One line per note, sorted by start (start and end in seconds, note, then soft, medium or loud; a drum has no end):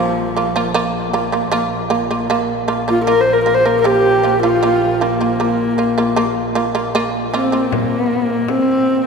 0.00 1.52 A#1 medium
0.00 1.04 F3 medium
0.00 0.29 A#3 medium
0.00 0.29 F4 medium
0.37 0.52 A#3 medium
0.37 0.53 F4 medium
0.56 0.72 A#3 medium
0.56 0.72 F4 medium
0.74 1.06 A#3 loud
0.74 1.06 F4 medium
1.13 1.30 A#3 medium
1.13 1.30 F4 medium
1.32 1.49 A#3 medium
1.32 1.49 F4 medium
1.52 7.79 A#1 medium
1.52 1.84 A#3 loud
1.52 1.84 F4 medium
1.90 2.07 A#3 medium
1.90 2.07 F4 medium
2.11 2.27 A#3 medium
2.11 2.27 F4 medium
2.30 2.62 A#3 medium
2.30 2.62 F4 medium
2.68 2.84 A#3 medium
2.68 2.85 F4 medium
2.88 3.04 A#3 medium
2.88 3.04 F4 medium
3.05 3.39 A#3 medium
3.05 3.39 F4 medium
3.05 3.22 A#4 medium
3.21 3.35 C5 medium
3.33 3.43 A#4 medium
3.44 3.62 A#3 medium
3.44 3.62 F4 medium
3.44 3.56 A#4 medium
3.54 3.67 C5 medium
3.65 3.82 A#3 medium
3.65 3.82 F4 medium
3.65 3.79 A#4 medium
3.80 4.16 A#3 medium
3.80 3.87 A#4 medium
3.85 4.17 F4 medium
3.85 4.42 G4 medium
4.23 4.40 A#3 medium
4.23 4.40 F4 medium
4.43 4.59 A#3 medium
4.43 5.04 F4 medium
4.43 4.59 F4 medium
4.63 4.94 A#3 medium
4.63 4.94 F4 medium
5.01 5.17 A#3 medium
5.01 6.42 A#3 medium
5.01 5.17 F4 medium
5.21 5.37 A#3 medium
5.21 5.37 F4 medium
5.40 5.71 A#3 medium
5.40 5.71 F4 medium
5.78 5.94 A#3 medium
5.78 5.94 F4 medium
5.98 6.14 A#3 medium
5.98 6.14 F4 medium
6.16 6.48 A#3 loud
6.16 6.48 F4 medium
6.55 6.71 A#3 medium
6.55 6.72 F4 medium
6.75 6.91 A#3 medium
6.75 6.91 F4 medium
6.95 7.26 A#3 loud
6.95 7.26 F4 medium
7.34 7.49 A#3 medium
7.34 7.73 C4 medium
7.34 7.49 F4 medium
7.52 7.68 A#3 medium
7.52 7.68 F4 medium
7.72 8.51 A#3 medium
7.72 frame drum medium
8.12 frame drum soft
8.48 9.07 C4 medium
8.48 frame drum medium
8.87 frame drum soft